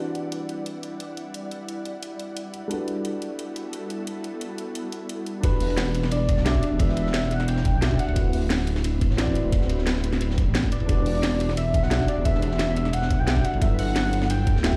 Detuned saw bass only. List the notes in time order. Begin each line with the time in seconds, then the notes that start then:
5.60 E1
5.86 E1
6.12 E1
6.38 B1
6.72 E1
6.97 E1
7.23 E1
7.48 E1
7.74 B1
8.08 D1
8.33 D1
8.59 D1
8.84 D1
9.10 A1
9.44 D1
9.70 D1
9.95 D1
10.21 D1
10.47 A1
10.81 E1
11.06 E1
11.32 E1
11.57 E1
11.83 B1
12.17 E1
12.42 E1
12.68 E1
12.94 E1
13.19 B1
13.54 G1
13.79 G1
14.05 G1
14.30 G1
14.56 D1